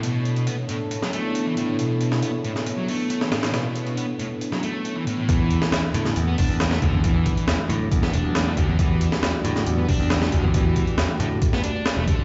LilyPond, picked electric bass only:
\new Staff \with { instrumentName = "Picked electric bass" } { \clef bass \time 4/4 \key e \minor \tempo 4 = 137 r1 | r1 | r1 | e,8. r16 e,16 r16 a,8 e,8 e,,16 e,8. d,16 e,16 |
e,8. r16 e,16 r16 a,8 e,8 e,,16 e,8. d,16 e,16 | e,8. r16 e,16 r16 a,8 e,8 e,,16 e,8. d,16 e,16 | e,8. r16 e,16 r16 a,8 r4 r16 e,,16 r8 | }